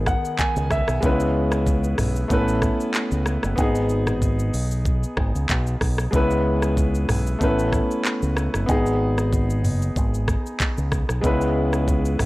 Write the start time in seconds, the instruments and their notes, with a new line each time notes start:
Already playing: fingered electric bass G#1, grand piano D#3 B3 G#4
0.06 grand piano F#5, kick, cross-stick, shaker
0.25 shaker
0.39 grand piano G#5, kick, clap, shaker
0.56 fingered electric bass C#2, shaker
0.70 grand piano E5, kick, cross-stick, shaker
0.88 fingered electric bass B1, cross-stick, shaker
1.00 fingered electric bass C#2, grand piano G#3 B3 C#4 E4, kick, shaker
1.05 grand piano B4
1.20 shaker
1.52 cross-stick, shaker
1.67 kick, shaker
1.84 shaker
1.98 fingered electric bass B1, cross-stick, mid tom, open hi-hat, shaker
2.16 shaker
2.28 fingered electric bass A1, grand piano A3 B3 C#4 E4, kick, shaker
2.33 grand piano B4
2.48 shaker
2.62 kick, cross-stick, shaker
2.80 shaker
2.94 clap, shaker
3.12 fingered electric bass C#2, shaker
3.26 cross-stick, shaker
3.43 fingered electric bass F#1, cross-stick, shaker
3.56 fingered electric bass G#1, grand piano B3 D#4, kick, shaker
3.61 grand piano G#4
3.75 shaker
3.89 shaker
4.07 cross-stick, mid tom, shaker
4.22 kick, shaker
4.39 shaker
4.54 fingered electric bass B1, open hi-hat, shaker
4.71 shaker
4.85 kick, shaker
5.03 shaker
5.17 fingered electric bass G#1, kick, cross-stick
5.35 fingered electric bass C#2, shaker
5.49 fingered electric bass B1, kick, clap, shaker
5.67 shaker
5.81 fingered electric bass B1, kick, cross-stick, open hi-hat
5.98 cross-stick, shaker
6.11 fingered electric bass C#2, grand piano G#3 B3 C#4 E4, kick, shaker
6.16 grand piano B4
6.31 shaker
6.62 cross-stick, shaker
6.77 kick, shaker
6.95 shaker
7.09 fingered electric bass B1, cross-stick, mid tom, open hi-hat, shaker
7.27 shaker
7.39 fingered electric bass A1, grand piano A3 B3 C#4 E4, kick, shaker
7.44 grand piano B4
7.59 shaker
7.73 kick, cross-stick, shaker
7.91 shaker
8.05 clap, shaker
8.22 fingered electric bass C#2, shaker
8.37 cross-stick, shaker
8.54 fingered electric bass F#1, cross-stick, shaker
8.66 fingered electric bass G#1, grand piano B3 D#4, kick, shaker
8.71 grand piano G#4
8.86 shaker
9.18 cross-stick, shaker
9.33 kick, shaker
9.50 shaker
9.64 fingered electric bass F#1, mid tom, open hi-hat, shaker
9.82 shaker
9.96 fingered electric bass G#1, kick, shaker
10.14 shaker
10.28 kick, cross-stick, shaker
10.46 shaker
10.60 kick, clap, shaker
10.78 fingered electric bass C#2, shaker
10.92 kick, cross-stick, shaker
11.09 fingered electric bass B1, cross-stick, shaker
11.21 fingered electric bass C#2, grand piano G#3 B3 C#4 E4, kick, shaker
11.26 grand piano B4
11.41 shaker
11.73 cross-stick, shaker
11.88 kick, shaker
12.05 shaker
12.19 fingered electric bass B1, cross-stick, mid tom, open hi-hat, shaker